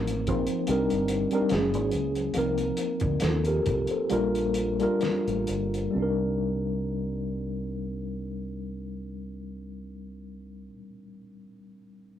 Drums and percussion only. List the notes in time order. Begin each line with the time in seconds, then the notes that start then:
0.07 closed hi-hat
0.27 kick, closed hi-hat
0.47 closed hi-hat
0.67 closed hi-hat
0.90 closed hi-hat
1.08 closed hi-hat
1.31 closed hi-hat
1.49 snare, closed hi-hat
1.74 closed hi-hat
1.92 closed hi-hat
2.15 closed hi-hat
2.34 closed hi-hat
2.58 closed hi-hat
2.77 closed hi-hat
3.00 kick, closed hi-hat
3.20 snare, closed hi-hat
3.45 closed hi-hat
3.66 kick, closed hi-hat
3.87 closed hi-hat
4.10 closed hi-hat
4.35 closed hi-hat
4.54 closed hi-hat
4.80 closed hi-hat
5.01 snare, closed hi-hat
5.28 closed hi-hat
5.47 closed hi-hat
5.74 closed hi-hat